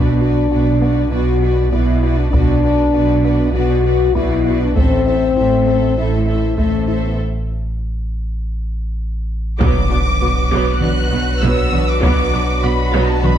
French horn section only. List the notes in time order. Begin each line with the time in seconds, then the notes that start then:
Already playing: D4
1.12 F#4
1.71 E4
2.18 D4
2.32 D4
3.53 F#4
4.14 E4
4.61 D4
4.77 C4
5.98 E4
6.58 A3
7.04 B3
9.61 B3 D4